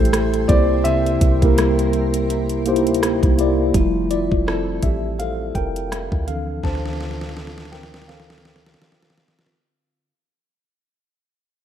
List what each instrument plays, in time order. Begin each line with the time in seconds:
Already playing: 808-style bass A1, clean electric guitar A2 G3 E4, tine electric piano A3 E4 G4 A4 C5, ambient pad A4 E5 G5 C6, grand piano C5
0.05 closed hi-hat
0.13 cross-stick, closed hi-hat
0.34 closed hi-hat
0.48 808-style bass C2, clean electric guitar C3, tine electric piano A#3 E4 G4 C5, ambient pad A#4, grand piano D5, kick, closed hi-hat
0.84 clean electric guitar C3 E4, grand piano E5, closed hi-hat
1.06 closed hi-hat
1.21 808-style bass C2, kick, closed hi-hat
1.42 808-style bass C2, tine electric piano A#3 E4 G4 A#4, kick, closed hi-hat
1.57 clean electric guitar G3, cross-stick, closed hi-hat
1.79 closed hi-hat
1.93 closed hi-hat
2.14 closed hi-hat
2.29 clean electric guitar E4, closed hi-hat
2.49 closed hi-hat
2.66 tine electric piano A#3 D#4 G4 C5, closed hi-hat
2.73 tine electric piano E4, closed hi-hat
2.87 808-style bass D2, closed hi-hat
2.94 closed hi-hat
3.03 cross-stick, closed hi-hat
3.23 808-style bass C2, kick, closed hi-hat
3.38 tine electric piano A#3 E4 G4 D5, clean electric guitar A#3, closed hi-hat
3.74 808-style bass F1, clean electric guitar F3, tine electric piano G3 A3 E4, kick, closed hi-hat
4.11 clean electric guitar E4, tine electric piano F4 D5, closed hi-hat
4.32 808-style bass F1, kick
4.47 clean electric guitar C4 E4 A4, cross-stick
4.82 808-style bass A1, tine electric piano G4 E5, kick, closed hi-hat
5.19 clean electric guitar C4, tine electric piano A4 F5, closed hi-hat
5.55 808-style bass F1, tine electric piano A#4 G5, kick, closed hi-hat
5.76 closed hi-hat
5.91 clean electric guitar E4, cross-stick, closed hi-hat
6.12 808-style bass D2, kick
6.27 clean electric guitar D3, tine electric piano E3 F3 C4 A4 F5, closed hi-hat
6.63 808-style bass D2, clean electric guitar D3, tine electric piano C5 A5, kick, snare
6.75 snare
6.86 snare
6.93 snare
6.99 clean electric guitar F4, snare
7.11 snare
7.21 snare
7.29 snare
7.36 clean electric guitar C4 F4 A4, snare
7.47 snare
7.58 snare
7.65 snare
7.72 tine electric piano A#4 G5, snare
7.83 snare
7.94 snare
8.02 snare
8.08 clean electric guitar C4, tine electric piano A4 F5, snare
8.20 snare
8.30 snare
8.38 snare
8.45 snare
8.56 snare
8.66 snare
8.74 snare
8.80 clean electric guitar F4, snare
8.92 snare
9.02 snare
9.10 snare
9.18 snare
9.28 snare
9.39 snare
9.46 snare